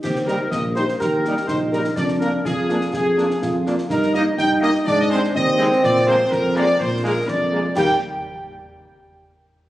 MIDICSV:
0, 0, Header, 1, 8, 480
1, 0, Start_track
1, 0, Key_signature, -3, "major"
1, 0, Tempo, 483092
1, 34, Time_signature, 2, 2, 24, 8
1, 9630, End_track
2, 0, Start_track
2, 0, Title_t, "Trumpet section"
2, 0, Program_c, 0, 61
2, 29, Note_on_c, 0, 67, 96
2, 138, Note_off_c, 0, 67, 0
2, 263, Note_on_c, 0, 70, 98
2, 374, Note_off_c, 0, 70, 0
2, 510, Note_on_c, 0, 75, 96
2, 619, Note_off_c, 0, 75, 0
2, 759, Note_on_c, 0, 72, 98
2, 866, Note_off_c, 0, 72, 0
2, 987, Note_on_c, 0, 70, 96
2, 1438, Note_off_c, 0, 70, 0
2, 1465, Note_on_c, 0, 72, 101
2, 1576, Note_off_c, 0, 72, 0
2, 1708, Note_on_c, 0, 70, 91
2, 1818, Note_off_c, 0, 70, 0
2, 1951, Note_on_c, 0, 74, 105
2, 2060, Note_off_c, 0, 74, 0
2, 2191, Note_on_c, 0, 70, 100
2, 2300, Note_off_c, 0, 70, 0
2, 2434, Note_on_c, 0, 68, 102
2, 2881, Note_off_c, 0, 68, 0
2, 2915, Note_on_c, 0, 68, 105
2, 3596, Note_off_c, 0, 68, 0
2, 3872, Note_on_c, 0, 70, 110
2, 4097, Note_off_c, 0, 70, 0
2, 4109, Note_on_c, 0, 75, 115
2, 4219, Note_off_c, 0, 75, 0
2, 4350, Note_on_c, 0, 79, 125
2, 4459, Note_off_c, 0, 79, 0
2, 4596, Note_on_c, 0, 75, 127
2, 4704, Note_off_c, 0, 75, 0
2, 4827, Note_on_c, 0, 74, 127
2, 4943, Note_off_c, 0, 74, 0
2, 4966, Note_on_c, 0, 75, 127
2, 5018, Note_off_c, 0, 75, 0
2, 5073, Note_on_c, 0, 72, 127
2, 5182, Note_off_c, 0, 72, 0
2, 5307, Note_on_c, 0, 75, 127
2, 5758, Note_off_c, 0, 75, 0
2, 5788, Note_on_c, 0, 74, 127
2, 6015, Note_off_c, 0, 74, 0
2, 6035, Note_on_c, 0, 72, 127
2, 6276, Note_off_c, 0, 72, 0
2, 6278, Note_on_c, 0, 70, 127
2, 6517, Note_off_c, 0, 70, 0
2, 6523, Note_on_c, 0, 74, 127
2, 6758, Note_on_c, 0, 72, 126
2, 6760, Note_off_c, 0, 74, 0
2, 6997, Note_off_c, 0, 72, 0
2, 6999, Note_on_c, 0, 70, 114
2, 7221, Note_off_c, 0, 70, 0
2, 7236, Note_on_c, 0, 74, 120
2, 7716, Note_off_c, 0, 74, 0
2, 7718, Note_on_c, 0, 79, 110
2, 7918, Note_off_c, 0, 79, 0
2, 9630, End_track
3, 0, Start_track
3, 0, Title_t, "Woodwind section"
3, 0, Program_c, 1, 71
3, 24, Note_on_c, 1, 67, 82
3, 134, Note_off_c, 1, 67, 0
3, 261, Note_on_c, 1, 70, 88
3, 491, Note_off_c, 1, 70, 0
3, 509, Note_on_c, 1, 75, 78
3, 619, Note_off_c, 1, 75, 0
3, 741, Note_on_c, 1, 72, 91
3, 971, Note_off_c, 1, 72, 0
3, 989, Note_on_c, 1, 70, 74
3, 1439, Note_off_c, 1, 70, 0
3, 1463, Note_on_c, 1, 72, 79
3, 1574, Note_off_c, 1, 72, 0
3, 1707, Note_on_c, 1, 70, 88
3, 1934, Note_off_c, 1, 70, 0
3, 1943, Note_on_c, 1, 74, 90
3, 2054, Note_off_c, 1, 74, 0
3, 2187, Note_on_c, 1, 70, 85
3, 2414, Note_off_c, 1, 70, 0
3, 2433, Note_on_c, 1, 68, 82
3, 2906, Note_off_c, 1, 68, 0
3, 2918, Note_on_c, 1, 68, 88
3, 3597, Note_off_c, 1, 68, 0
3, 3871, Note_on_c, 1, 70, 94
3, 4097, Note_off_c, 1, 70, 0
3, 4110, Note_on_c, 1, 75, 103
3, 4219, Note_off_c, 1, 75, 0
3, 4351, Note_on_c, 1, 79, 101
3, 4576, Note_off_c, 1, 79, 0
3, 4586, Note_on_c, 1, 75, 111
3, 4829, Note_on_c, 1, 74, 110
3, 4831, Note_off_c, 1, 75, 0
3, 4953, Note_off_c, 1, 74, 0
3, 4958, Note_on_c, 1, 75, 95
3, 5011, Note_off_c, 1, 75, 0
3, 5081, Note_on_c, 1, 72, 109
3, 5302, Note_off_c, 1, 72, 0
3, 5314, Note_on_c, 1, 75, 111
3, 5761, Note_off_c, 1, 75, 0
3, 5800, Note_on_c, 1, 74, 111
3, 6021, Note_off_c, 1, 74, 0
3, 6033, Note_on_c, 1, 72, 111
3, 6257, Note_off_c, 1, 72, 0
3, 6265, Note_on_c, 1, 70, 104
3, 6511, Note_off_c, 1, 70, 0
3, 6514, Note_on_c, 1, 74, 121
3, 6738, Note_off_c, 1, 74, 0
3, 6754, Note_on_c, 1, 72, 105
3, 6862, Note_off_c, 1, 72, 0
3, 6997, Note_on_c, 1, 70, 99
3, 7220, Note_off_c, 1, 70, 0
3, 7238, Note_on_c, 1, 74, 91
3, 7683, Note_off_c, 1, 74, 0
3, 7708, Note_on_c, 1, 79, 101
3, 7911, Note_off_c, 1, 79, 0
3, 9630, End_track
4, 0, Start_track
4, 0, Title_t, "Euphonium"
4, 0, Program_c, 2, 58
4, 35, Note_on_c, 2, 60, 85
4, 522, Note_on_c, 2, 58, 67
4, 537, Note_off_c, 2, 60, 0
4, 986, Note_off_c, 2, 58, 0
4, 992, Note_on_c, 2, 67, 86
4, 1441, Note_off_c, 2, 67, 0
4, 1480, Note_on_c, 2, 63, 83
4, 1925, Note_off_c, 2, 63, 0
4, 1957, Note_on_c, 2, 62, 86
4, 2439, Note_on_c, 2, 65, 88
4, 2454, Note_off_c, 2, 62, 0
4, 2919, Note_on_c, 2, 68, 99
4, 2934, Note_off_c, 2, 65, 0
4, 3394, Note_off_c, 2, 68, 0
4, 3400, Note_on_c, 2, 65, 92
4, 3845, Note_off_c, 2, 65, 0
4, 3873, Note_on_c, 2, 63, 98
4, 4321, Note_off_c, 2, 63, 0
4, 4355, Note_on_c, 2, 63, 103
4, 4802, Note_off_c, 2, 63, 0
4, 4839, Note_on_c, 2, 62, 111
4, 5316, Note_on_c, 2, 60, 124
4, 5331, Note_off_c, 2, 62, 0
4, 6958, Note_off_c, 2, 60, 0
4, 7237, Note_on_c, 2, 62, 86
4, 7460, Note_off_c, 2, 62, 0
4, 9630, End_track
5, 0, Start_track
5, 0, Title_t, "French horn section"
5, 0, Program_c, 3, 60
5, 276, Note_on_c, 3, 58, 67
5, 277, Note_on_c, 3, 67, 68
5, 279, Note_on_c, 3, 63, 65
5, 362, Note_off_c, 3, 58, 0
5, 363, Note_off_c, 3, 67, 0
5, 365, Note_off_c, 3, 63, 0
5, 757, Note_on_c, 3, 63, 62
5, 757, Note_on_c, 3, 67, 66
5, 758, Note_on_c, 3, 58, 62
5, 843, Note_off_c, 3, 63, 0
5, 843, Note_off_c, 3, 67, 0
5, 844, Note_off_c, 3, 58, 0
5, 1235, Note_on_c, 3, 67, 63
5, 1237, Note_on_c, 3, 63, 62
5, 1238, Note_on_c, 3, 58, 66
5, 1322, Note_off_c, 3, 67, 0
5, 1323, Note_off_c, 3, 63, 0
5, 1324, Note_off_c, 3, 58, 0
5, 1714, Note_on_c, 3, 58, 62
5, 1714, Note_on_c, 3, 67, 61
5, 1715, Note_on_c, 3, 63, 63
5, 1801, Note_off_c, 3, 58, 0
5, 1801, Note_off_c, 3, 63, 0
5, 1801, Note_off_c, 3, 67, 0
5, 2195, Note_on_c, 3, 62, 68
5, 2196, Note_on_c, 3, 58, 70
5, 2196, Note_on_c, 3, 65, 68
5, 2282, Note_off_c, 3, 58, 0
5, 2282, Note_off_c, 3, 62, 0
5, 2283, Note_off_c, 3, 65, 0
5, 2673, Note_on_c, 3, 62, 64
5, 2675, Note_on_c, 3, 65, 64
5, 2677, Note_on_c, 3, 58, 63
5, 2760, Note_off_c, 3, 62, 0
5, 2761, Note_off_c, 3, 65, 0
5, 2763, Note_off_c, 3, 58, 0
5, 3158, Note_on_c, 3, 62, 74
5, 3158, Note_on_c, 3, 65, 75
5, 3159, Note_on_c, 3, 58, 73
5, 3244, Note_off_c, 3, 62, 0
5, 3244, Note_off_c, 3, 65, 0
5, 3245, Note_off_c, 3, 58, 0
5, 3626, Note_on_c, 3, 65, 71
5, 3628, Note_on_c, 3, 62, 71
5, 3629, Note_on_c, 3, 58, 72
5, 3715, Note_off_c, 3, 65, 0
5, 3716, Note_off_c, 3, 62, 0
5, 3717, Note_off_c, 3, 58, 0
5, 4112, Note_on_c, 3, 63, 79
5, 4115, Note_off_c, 3, 63, 0
5, 4115, Note_on_c, 3, 63, 77
5, 4116, Note_on_c, 3, 58, 78
5, 4202, Note_off_c, 3, 63, 0
5, 4203, Note_off_c, 3, 58, 0
5, 4591, Note_on_c, 3, 63, 80
5, 4592, Note_off_c, 3, 63, 0
5, 4592, Note_on_c, 3, 58, 84
5, 4592, Note_on_c, 3, 63, 77
5, 4679, Note_off_c, 3, 58, 0
5, 4680, Note_off_c, 3, 63, 0
5, 5065, Note_on_c, 3, 60, 90
5, 5066, Note_on_c, 3, 56, 85
5, 5068, Note_on_c, 3, 63, 87
5, 5154, Note_off_c, 3, 60, 0
5, 5155, Note_off_c, 3, 56, 0
5, 5156, Note_off_c, 3, 63, 0
5, 5551, Note_on_c, 3, 56, 83
5, 5552, Note_on_c, 3, 63, 79
5, 5554, Note_on_c, 3, 60, 84
5, 5638, Note_off_c, 3, 56, 0
5, 5639, Note_off_c, 3, 63, 0
5, 5640, Note_off_c, 3, 60, 0
5, 6027, Note_on_c, 3, 68, 90
5, 6028, Note_on_c, 3, 58, 97
5, 6029, Note_on_c, 3, 53, 91
5, 6116, Note_off_c, 3, 68, 0
5, 6117, Note_off_c, 3, 53, 0
5, 6117, Note_off_c, 3, 58, 0
5, 6512, Note_on_c, 3, 68, 84
5, 6513, Note_on_c, 3, 58, 85
5, 6514, Note_on_c, 3, 53, 86
5, 6599, Note_off_c, 3, 68, 0
5, 6600, Note_off_c, 3, 58, 0
5, 6601, Note_off_c, 3, 53, 0
5, 6987, Note_on_c, 3, 68, 84
5, 6990, Note_on_c, 3, 53, 82
5, 6992, Note_on_c, 3, 58, 85
5, 7075, Note_off_c, 3, 68, 0
5, 7078, Note_off_c, 3, 53, 0
5, 7079, Note_off_c, 3, 58, 0
5, 7465, Note_on_c, 3, 68, 72
5, 7468, Note_on_c, 3, 53, 71
5, 7468, Note_on_c, 3, 58, 71
5, 7554, Note_off_c, 3, 68, 0
5, 7556, Note_off_c, 3, 53, 0
5, 7557, Note_off_c, 3, 58, 0
5, 7702, Note_on_c, 3, 58, 89
5, 7703, Note_on_c, 3, 55, 90
5, 7704, Note_on_c, 3, 67, 90
5, 7908, Note_off_c, 3, 58, 0
5, 7909, Note_off_c, 3, 55, 0
5, 7909, Note_off_c, 3, 67, 0
5, 9630, End_track
6, 0, Start_track
6, 0, Title_t, "Trombone section"
6, 0, Program_c, 4, 61
6, 277, Note_on_c, 4, 55, 84
6, 279, Note_on_c, 4, 63, 79
6, 360, Note_off_c, 4, 55, 0
6, 361, Note_off_c, 4, 63, 0
6, 751, Note_on_c, 4, 55, 77
6, 755, Note_on_c, 4, 63, 75
6, 836, Note_off_c, 4, 55, 0
6, 839, Note_off_c, 4, 63, 0
6, 1254, Note_on_c, 4, 63, 85
6, 1257, Note_on_c, 4, 55, 81
6, 1332, Note_off_c, 4, 63, 0
6, 1334, Note_off_c, 4, 55, 0
6, 1721, Note_on_c, 4, 63, 77
6, 1731, Note_on_c, 4, 55, 76
6, 1803, Note_off_c, 4, 63, 0
6, 1810, Note_off_c, 4, 55, 0
6, 2199, Note_on_c, 4, 62, 78
6, 2201, Note_on_c, 4, 58, 84
6, 2282, Note_off_c, 4, 62, 0
6, 2283, Note_off_c, 4, 58, 0
6, 2674, Note_on_c, 4, 58, 81
6, 2676, Note_on_c, 4, 62, 83
6, 2759, Note_off_c, 4, 58, 0
6, 2760, Note_off_c, 4, 62, 0
6, 3155, Note_on_c, 4, 58, 89
6, 3157, Note_on_c, 4, 62, 91
6, 3239, Note_off_c, 4, 58, 0
6, 3240, Note_off_c, 4, 62, 0
6, 3644, Note_on_c, 4, 62, 83
6, 3649, Note_on_c, 4, 58, 88
6, 3725, Note_off_c, 4, 62, 0
6, 3728, Note_off_c, 4, 58, 0
6, 4120, Note_on_c, 4, 58, 96
6, 4120, Note_on_c, 4, 63, 98
6, 4202, Note_off_c, 4, 58, 0
6, 4202, Note_off_c, 4, 63, 0
6, 4595, Note_on_c, 4, 58, 100
6, 4596, Note_on_c, 4, 63, 93
6, 4679, Note_off_c, 4, 58, 0
6, 4680, Note_off_c, 4, 63, 0
6, 5071, Note_on_c, 4, 56, 109
6, 5074, Note_on_c, 4, 60, 105
6, 5156, Note_off_c, 4, 56, 0
6, 5158, Note_off_c, 4, 60, 0
6, 5543, Note_on_c, 4, 60, 106
6, 5547, Note_on_c, 4, 56, 105
6, 5631, Note_off_c, 4, 60, 0
6, 5634, Note_off_c, 4, 56, 0
6, 6029, Note_on_c, 4, 56, 106
6, 6035, Note_on_c, 4, 58, 110
6, 6115, Note_off_c, 4, 56, 0
6, 6119, Note_off_c, 4, 58, 0
6, 6505, Note_on_c, 4, 58, 111
6, 6514, Note_on_c, 4, 56, 104
6, 6592, Note_off_c, 4, 58, 0
6, 6598, Note_off_c, 4, 56, 0
6, 6986, Note_on_c, 4, 58, 102
6, 6987, Note_on_c, 4, 56, 107
6, 7073, Note_off_c, 4, 58, 0
6, 7074, Note_off_c, 4, 56, 0
6, 7470, Note_on_c, 4, 56, 86
6, 7472, Note_on_c, 4, 58, 87
6, 7556, Note_off_c, 4, 56, 0
6, 7557, Note_off_c, 4, 58, 0
6, 7706, Note_on_c, 4, 55, 98
6, 7707, Note_on_c, 4, 58, 93
6, 7910, Note_off_c, 4, 55, 0
6, 7911, Note_off_c, 4, 58, 0
6, 9630, End_track
7, 0, Start_track
7, 0, Title_t, "Tuba"
7, 0, Program_c, 5, 58
7, 32, Note_on_c, 5, 39, 82
7, 434, Note_off_c, 5, 39, 0
7, 513, Note_on_c, 5, 34, 80
7, 914, Note_off_c, 5, 34, 0
7, 995, Note_on_c, 5, 39, 85
7, 1395, Note_off_c, 5, 39, 0
7, 1475, Note_on_c, 5, 34, 77
7, 1875, Note_off_c, 5, 34, 0
7, 1955, Note_on_c, 5, 41, 83
7, 2356, Note_off_c, 5, 41, 0
7, 2435, Note_on_c, 5, 41, 78
7, 2835, Note_off_c, 5, 41, 0
7, 2916, Note_on_c, 5, 41, 86
7, 3316, Note_off_c, 5, 41, 0
7, 3388, Note_on_c, 5, 41, 86
7, 3750, Note_off_c, 5, 41, 0
7, 3871, Note_on_c, 5, 43, 97
7, 4273, Note_off_c, 5, 43, 0
7, 4352, Note_on_c, 5, 43, 93
7, 4754, Note_off_c, 5, 43, 0
7, 4836, Note_on_c, 5, 44, 110
7, 5236, Note_off_c, 5, 44, 0
7, 5316, Note_on_c, 5, 39, 102
7, 5716, Note_off_c, 5, 39, 0
7, 5795, Note_on_c, 5, 46, 113
7, 6195, Note_off_c, 5, 46, 0
7, 6281, Note_on_c, 5, 41, 109
7, 6678, Note_off_c, 5, 41, 0
7, 6758, Note_on_c, 5, 46, 113
7, 7157, Note_off_c, 5, 46, 0
7, 7241, Note_on_c, 5, 41, 90
7, 7638, Note_off_c, 5, 41, 0
7, 7723, Note_on_c, 5, 39, 99
7, 7921, Note_off_c, 5, 39, 0
7, 9630, End_track
8, 0, Start_track
8, 0, Title_t, "Drums"
8, 37, Note_on_c, 9, 35, 87
8, 37, Note_on_c, 9, 38, 75
8, 37, Note_on_c, 9, 49, 52
8, 136, Note_off_c, 9, 35, 0
8, 136, Note_off_c, 9, 38, 0
8, 136, Note_off_c, 9, 49, 0
8, 156, Note_on_c, 9, 38, 55
8, 256, Note_off_c, 9, 38, 0
8, 279, Note_on_c, 9, 38, 58
8, 378, Note_off_c, 9, 38, 0
8, 514, Note_on_c, 9, 35, 79
8, 514, Note_on_c, 9, 38, 80
8, 613, Note_off_c, 9, 35, 0
8, 613, Note_off_c, 9, 38, 0
8, 755, Note_on_c, 9, 38, 55
8, 854, Note_off_c, 9, 38, 0
8, 880, Note_on_c, 9, 38, 54
8, 979, Note_off_c, 9, 38, 0
8, 1004, Note_on_c, 9, 35, 89
8, 1004, Note_on_c, 9, 38, 79
8, 1103, Note_off_c, 9, 35, 0
8, 1103, Note_off_c, 9, 38, 0
8, 1240, Note_on_c, 9, 38, 58
8, 1339, Note_off_c, 9, 38, 0
8, 1361, Note_on_c, 9, 38, 55
8, 1460, Note_off_c, 9, 38, 0
8, 1472, Note_on_c, 9, 35, 78
8, 1472, Note_on_c, 9, 38, 85
8, 1571, Note_off_c, 9, 35, 0
8, 1571, Note_off_c, 9, 38, 0
8, 1720, Note_on_c, 9, 38, 56
8, 1819, Note_off_c, 9, 38, 0
8, 1831, Note_on_c, 9, 38, 59
8, 1931, Note_off_c, 9, 38, 0
8, 1951, Note_on_c, 9, 35, 88
8, 1951, Note_on_c, 9, 38, 77
8, 1951, Note_on_c, 9, 49, 33
8, 2050, Note_off_c, 9, 35, 0
8, 2050, Note_off_c, 9, 38, 0
8, 2050, Note_off_c, 9, 49, 0
8, 2069, Note_on_c, 9, 38, 57
8, 2168, Note_off_c, 9, 38, 0
8, 2195, Note_on_c, 9, 38, 57
8, 2294, Note_off_c, 9, 38, 0
8, 2437, Note_on_c, 9, 35, 82
8, 2437, Note_on_c, 9, 38, 82
8, 2536, Note_off_c, 9, 35, 0
8, 2536, Note_off_c, 9, 38, 0
8, 2677, Note_on_c, 9, 38, 54
8, 2776, Note_off_c, 9, 38, 0
8, 2792, Note_on_c, 9, 38, 56
8, 2891, Note_off_c, 9, 38, 0
8, 2916, Note_on_c, 9, 35, 84
8, 2916, Note_on_c, 9, 38, 77
8, 3015, Note_off_c, 9, 35, 0
8, 3015, Note_off_c, 9, 38, 0
8, 3160, Note_on_c, 9, 38, 56
8, 3260, Note_off_c, 9, 38, 0
8, 3286, Note_on_c, 9, 38, 56
8, 3385, Note_off_c, 9, 38, 0
8, 3399, Note_on_c, 9, 35, 83
8, 3399, Note_on_c, 9, 38, 84
8, 3498, Note_off_c, 9, 35, 0
8, 3498, Note_off_c, 9, 38, 0
8, 3643, Note_on_c, 9, 38, 59
8, 3742, Note_off_c, 9, 38, 0
8, 3757, Note_on_c, 9, 38, 57
8, 3857, Note_off_c, 9, 38, 0
8, 3876, Note_on_c, 9, 35, 90
8, 3876, Note_on_c, 9, 38, 77
8, 3876, Note_on_c, 9, 49, 34
8, 3975, Note_off_c, 9, 35, 0
8, 3975, Note_off_c, 9, 38, 0
8, 3975, Note_off_c, 9, 49, 0
8, 4000, Note_on_c, 9, 38, 60
8, 4100, Note_off_c, 9, 38, 0
8, 4117, Note_on_c, 9, 38, 56
8, 4216, Note_off_c, 9, 38, 0
8, 4356, Note_on_c, 9, 35, 82
8, 4356, Note_on_c, 9, 38, 87
8, 4455, Note_off_c, 9, 35, 0
8, 4455, Note_off_c, 9, 38, 0
8, 4599, Note_on_c, 9, 38, 62
8, 4698, Note_off_c, 9, 38, 0
8, 4717, Note_on_c, 9, 38, 57
8, 4816, Note_off_c, 9, 38, 0
8, 4840, Note_on_c, 9, 35, 88
8, 4840, Note_on_c, 9, 38, 81
8, 4939, Note_off_c, 9, 35, 0
8, 4939, Note_off_c, 9, 38, 0
8, 5086, Note_on_c, 9, 38, 59
8, 5185, Note_off_c, 9, 38, 0
8, 5207, Note_on_c, 9, 38, 59
8, 5307, Note_off_c, 9, 38, 0
8, 5324, Note_on_c, 9, 35, 88
8, 5324, Note_on_c, 9, 38, 86
8, 5423, Note_off_c, 9, 35, 0
8, 5423, Note_off_c, 9, 38, 0
8, 5558, Note_on_c, 9, 38, 60
8, 5658, Note_off_c, 9, 38, 0
8, 5687, Note_on_c, 9, 38, 57
8, 5786, Note_off_c, 9, 38, 0
8, 5803, Note_on_c, 9, 35, 93
8, 5803, Note_on_c, 9, 38, 82
8, 5803, Note_on_c, 9, 49, 34
8, 5903, Note_off_c, 9, 35, 0
8, 5903, Note_off_c, 9, 38, 0
8, 5903, Note_off_c, 9, 49, 0
8, 5923, Note_on_c, 9, 38, 57
8, 6022, Note_off_c, 9, 38, 0
8, 6041, Note_on_c, 9, 38, 58
8, 6141, Note_off_c, 9, 38, 0
8, 6279, Note_on_c, 9, 35, 91
8, 6279, Note_on_c, 9, 38, 84
8, 6379, Note_off_c, 9, 35, 0
8, 6379, Note_off_c, 9, 38, 0
8, 6517, Note_on_c, 9, 38, 60
8, 6617, Note_off_c, 9, 38, 0
8, 6631, Note_on_c, 9, 38, 59
8, 6731, Note_off_c, 9, 38, 0
8, 6754, Note_on_c, 9, 35, 89
8, 6754, Note_on_c, 9, 38, 72
8, 6854, Note_off_c, 9, 35, 0
8, 6854, Note_off_c, 9, 38, 0
8, 7232, Note_on_c, 9, 35, 89
8, 7232, Note_on_c, 9, 38, 84
8, 7331, Note_off_c, 9, 35, 0
8, 7331, Note_off_c, 9, 38, 0
8, 7715, Note_on_c, 9, 35, 101
8, 7715, Note_on_c, 9, 38, 99
8, 7715, Note_on_c, 9, 49, 87
8, 7815, Note_off_c, 9, 35, 0
8, 7815, Note_off_c, 9, 38, 0
8, 7815, Note_off_c, 9, 49, 0
8, 9630, End_track
0, 0, End_of_file